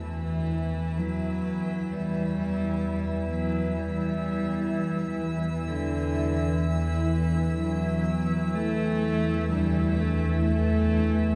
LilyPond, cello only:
\new Staff \with { instrumentName = "Cello" } { \clef bass \time 4/4 \key d \mixolydian \tempo 4 = 64 e4 fis4 g4. fis8 | g4. e8 d4 e4 | fis4 a4 g8 a8 a4 | }